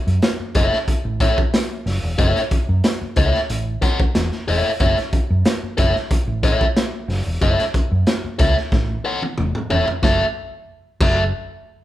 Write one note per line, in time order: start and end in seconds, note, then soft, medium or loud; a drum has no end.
0.07 0.19 F#2 medium
0.07 closed hi-hat soft
0.22 snare loud
0.22 closed hi-hat medium
0.40 muted fingered electric bass stroke medium
0.55 0.68 F#1 loud
0.55 0.76 A4 medium
0.55 0.76 C#5 medium
0.55 0.76 E5 loud
0.55 kick loud
0.55 snare soft
0.55 closed hi-hat medium
0.73 snare soft
0.88 muted fingered electric bass stroke medium
0.88 kick medium
0.88 closed hi-hat medium
1.05 1.30 A1 medium
1.20 1.36 A4 medium
1.20 1.36 C#5 medium
1.20 1.36 E5 medium
1.20 kick loud
1.20 snare soft
1.20 closed hi-hat medium
1.38 kick loud
1.54 snare loud
1.54 closed hi-hat medium
1.86 1.99 F#1 loud
1.86 snare soft
1.86 open hi-hat medium
2.03 2.15 E1 medium
2.18 2.32 F#1 loud
2.18 2.39 A4 medium
2.18 2.40 C#5 loud
2.18 2.40 E5 loud
2.18 kick loud
2.18 closed hi-hat medium
2.36 snare soft
2.36 closed hi-hat soft
2.51 muted fingered electric bass stroke soft
2.51 kick loud
2.51 closed hi-hat medium
2.69 2.81 F#2 medium
2.84 snare loud
2.84 closed hi-hat medium
3.01 muted fingered electric bass stroke medium
3.16 3.30 C#2 medium
3.16 3.37 A4 medium
3.16 3.38 C#5 medium
3.16 3.38 E5 loud
3.16 kick medium
3.16 closed hi-hat medium
3.34 snare soft
3.50 3.75 A1 medium
3.50 closed hi-hat loud
3.82 3.97 A4 medium
3.82 3.98 C#5 medium
3.82 3.98 F#5 loud
3.82 kick loud
3.82 snare soft
3.82 closed hi-hat medium
4.00 kick loud
4.15 4.28 E1 loud
4.15 snare loud
4.15 closed hi-hat medium
4.32 snare soft
4.48 4.61 E1 medium
4.48 4.68 A4 loud
4.48 4.69 C#5 loud
4.48 4.69 E5 loud
4.48 open hi-hat medium
4.80 4.94 F#1 loud
4.80 4.95 A4 medium
4.80 4.96 C#5 medium
4.80 4.96 E5 loud
4.80 kick loud
4.80 closed hi-hat medium
4.98 snare soft
4.98 closed hi-hat soft
5.13 muted fingered electric bass stroke soft
5.13 kick medium
5.13 closed hi-hat medium
5.30 5.42 F#2 loud
5.45 snare loud
5.45 closed hi-hat medium
5.63 muted fingered electric bass stroke soft
5.77 5.92 F#1 loud
5.77 5.93 A4 medium
5.77 5.93 C#5 medium
5.77 5.94 E5 loud
5.77 kick loud
5.77 snare soft
5.77 closed hi-hat medium
5.96 snare soft
6.11 muted fingered electric bass stroke soft
6.11 kick medium
6.11 closed hi-hat loud
6.27 6.53 A1 medium
6.43 6.64 A4 medium
6.43 6.64 C#5 medium
6.43 6.65 E5 medium
6.43 kick loud
6.43 snare soft
6.43 closed hi-hat medium
6.61 kick medium
6.77 snare loud
6.77 closed hi-hat loud
7.08 7.22 F#1 loud
7.08 snare soft
7.08 open hi-hat medium
7.26 7.38 E1 medium
7.42 7.55 F#1 loud
7.42 7.62 A4 medium
7.42 7.63 C#5 medium
7.42 7.63 E5 loud
7.42 kick loud
7.42 closed hi-hat medium
7.60 snare soft
7.60 closed hi-hat soft
7.74 muted fingered electric bass stroke soft
7.74 kick loud
7.74 closed hi-hat medium
7.92 8.03 F#2 medium
8.07 snare loud
8.07 closed hi-hat medium
8.24 muted fingered electric bass stroke medium
8.39 8.53 C#2 loud
8.39 8.54 A4 medium
8.39 8.55 C#5 medium
8.39 8.55 E5 loud
8.39 kick loud
8.39 snare soft
8.39 closed hi-hat medium
8.57 snare soft
8.72 8.97 A1 loud
8.72 kick loud
8.72 snare medium
9.05 9.20 A4 medium
9.05 9.20 C#5 medium
9.05 9.20 F#5 loud
9.22 high tom medium
9.38 9.51 E1 medium
9.38 mid tom medium
9.55 mid tom medium
9.70 9.83 E1 medium
9.70 9.85 A4 medium
9.70 9.85 C#5 medium
9.70 9.86 E5 loud
9.70 floor tom loud
9.88 floor tom loud
10.03 10.22 F#1 loud
10.03 10.23 F#4 medium
10.03 10.24 A4 medium
10.03 10.24 E5 loud
10.03 kick loud
10.03 snare medium
11.01 11.31 F#1 loud
11.01 11.21 F#4 medium
11.01 11.21 A4 medium
11.01 11.22 E5 medium
11.01 kick loud
11.01 crash medium